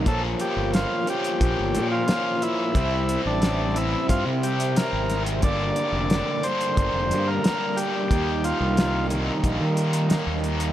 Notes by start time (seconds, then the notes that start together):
0.06 A#1 A#2 F3 A#3 C#4 A4 C5 C#5, kick, closed hi-hat
0.40 G4, closed hi-hat
0.57 G1
0.74 F4, snare, closed hi-hat
1.07 A#2 F3 A#3 C#4 G4, closed hi-hat
1.24 closed hi-hat
1.40 A#1, kick, closed hi-hat
1.59 G1
1.75 A#2, closed hi-hat
1.92 F4
2.07 A#2 F3 A#3 C#4, snare, closed hi-hat
2.42 E4, closed hi-hat
2.74 C2 C3 G3 C4 E4 C5 E5 G5 C6, kick, closed hi-hat
3.09 closed hi-hat
3.26 A1 D4
3.42 snare, closed hi-hat
3.74 C3 G3 C4 E4, closed hi-hat
4.09 G2 F4, kick, closed hi-hat
4.26 C3
4.43 G4, closed hi-hat
4.60 closed hi-hat
4.76 C3 G3 C4 E4 A#4, snare, closed hi-hat
4.93 G#1
5.10 snare, closed hi-hat
5.26 closed hi-hat
5.42 G1 G2 D3 G3 A#3 D4 A#4 D5 A#5, kick, closed hi-hat
5.76 closed hi-hat
5.92 F1
6.10 snare, closed hi-hat
6.43 G2 D3 G3 A#3 D4 C5, closed hi-hat
6.61 closed hi-hat
6.77 G1, kick, closed hi-hat
6.94 F1
7.10 G2, closed hi-hat
7.28 A#4
7.43 G2 D3 G3 A#3 D4, snare, closed hi-hat
7.76 G4, closed hi-hat
8.10 D#2 D#3 G3 A#3 D#4 D#5 A#5, kick, closed hi-hat
8.44 F4, closed hi-hat
8.60 C2
8.77 snare, closed hi-hat
9.09 D#3 G3 A#3 D#4, closed hi-hat
9.44 A#1, kick, closed hi-hat
9.61 D#3
9.77 closed hi-hat
9.93 closed hi-hat
10.09 D#3 G3 A#3 D#4, snare, closed hi-hat
10.27 D#2
10.44 closed hi-hat
10.60 closed hi-hat